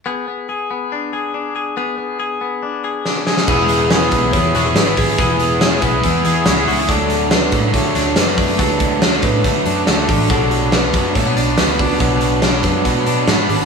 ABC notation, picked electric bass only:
X:1
M:4/4
L:1/8
Q:1/4=141
K:Emix
V:1 name="Picked electric bass" clef=bass
z8 | z8 | E,,,3 B,,, E,, E,,, G,,, G,,, | E,,,3 B,,, E,, E,, C,, C,, |
D,,3 A,, D, D,, F,, F,, | D,,3 A,, D, F,, D,, A,,, | B,,,3 F,, B,, B,,, D,, D,, | B,,,3 F,, B,, B,, G,, G,,, |]